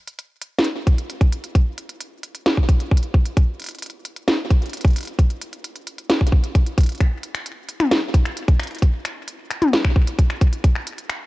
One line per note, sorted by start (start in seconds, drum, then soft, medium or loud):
0.07 closed hi-hat medium
0.19 closed hi-hat medium
0.42 closed hi-hat medium
0.59 snare loud
0.59 closed hi-hat medium
0.64 closed hi-hat medium
0.87 kick loud
0.87 closed hi-hat medium
0.98 closed hi-hat medium
1.10 closed hi-hat medium
1.21 kick loud
1.21 closed hi-hat soft
1.32 closed hi-hat medium
1.44 closed hi-hat medium
1.55 kick loud
1.55 closed hi-hat medium
1.78 closed hi-hat medium
1.89 closed hi-hat medium
2.01 closed hi-hat medium
2.23 closed hi-hat medium
2.35 closed hi-hat medium
2.46 snare loud
2.46 closed hi-hat medium
2.57 kick medium
2.69 kick loud
2.69 closed hi-hat medium
2.80 closed hi-hat medium
2.91 kick loud
2.97 closed hi-hat medium
3.03 closed hi-hat soft
3.14 kick loud
3.26 closed hi-hat medium
3.37 kick loud
3.37 closed hi-hat medium
3.60 closed hi-hat soft
3.62 closed hi-hat soft
3.64 closed hi-hat medium
3.66 closed hi-hat medium
3.69 closed hi-hat medium
3.71 closed hi-hat soft
3.75 closed hi-hat soft
3.79 closed hi-hat soft
3.82 closed hi-hat medium
3.86 closed hi-hat soft
3.90 closed hi-hat soft
4.05 closed hi-hat medium
4.16 closed hi-hat medium
4.28 snare loud
4.28 closed hi-hat medium
4.50 kick loud
4.50 closed hi-hat medium
4.62 closed hi-hat soft
4.66 closed hi-hat soft
4.70 closed hi-hat soft
4.73 closed hi-hat medium
4.77 closed hi-hat soft
4.81 kick loud
4.81 closed hi-hat soft
4.85 closed hi-hat soft
4.87 closed hi-hat soft
4.90 closed hi-hat soft
4.93 closed hi-hat soft
4.96 closed hi-hat medium
4.98 closed hi-hat medium
4.98 closed hi-hat soft
5.01 closed hi-hat soft
5.03 closed hi-hat soft
5.05 closed hi-hat soft
5.07 closed hi-hat soft
5.19 kick loud
5.19 closed hi-hat medium
5.30 closed hi-hat soft
5.42 closed hi-hat medium
5.53 closed hi-hat soft
5.64 closed hi-hat medium
5.76 closed hi-hat soft
5.87 closed hi-hat medium
5.98 closed hi-hat soft
6.10 snare loud
6.10 closed hi-hat medium
6.21 kick medium
6.27 closed hi-hat medium
6.32 kick loud
6.44 closed hi-hat soft
6.55 kick loud
6.55 closed hi-hat medium
6.66 closed hi-hat soft
6.78 kick loud
6.78 closed hi-hat medium
6.81 closed hi-hat medium
6.83 closed hi-hat soft
6.86 closed hi-hat soft
6.89 closed hi-hat soft
6.92 closed hi-hat soft
6.95 closed hi-hat soft
6.98 finger snap soft
6.98 kick loud
6.98 closed hi-hat soft
7.01 closed hi-hat medium
7.23 closed hi-hat medium
7.35 finger snap medium
7.35 closed hi-hat soft
7.46 closed hi-hat medium
7.69 closed hi-hat medium
7.80 finger snap soft
7.80 closed hi-hat soft
7.80 high tom medium
7.91 snare loud
7.91 closed hi-hat medium
8.14 kick loud
8.14 closed hi-hat medium
8.25 finger snap soft
8.25 closed hi-hat soft
8.37 closed hi-hat medium
8.48 kick loud
8.48 closed hi-hat soft
8.60 finger snap medium
8.60 closed hi-hat medium
8.63 closed hi-hat medium
8.67 closed hi-hat soft
8.71 closed hi-hat soft
8.75 closed hi-hat soft
8.78 kick medium
8.78 closed hi-hat soft
8.82 closed hi-hat medium
9.05 finger snap medium
9.05 closed hi-hat medium
9.28 closed hi-hat medium
9.51 finger snap soft
9.51 closed hi-hat medium
9.62 closed hi-hat soft
9.62 high tom medium
9.73 snare loud
9.73 closed hi-hat medium
9.85 finger snap medium
9.85 kick medium
9.96 kick loud
10.07 closed hi-hat medium
10.19 kick medium
10.19 closed hi-hat medium
10.30 finger snap medium
10.30 closed hi-hat soft
10.41 kick loud
10.41 closed hi-hat medium
10.53 closed hi-hat soft
10.64 kick loud
10.64 closed hi-hat medium
10.75 finger snap medium
10.87 closed hi-hat medium
10.98 closed hi-hat soft
11.10 finger snap medium
11.10 closed hi-hat medium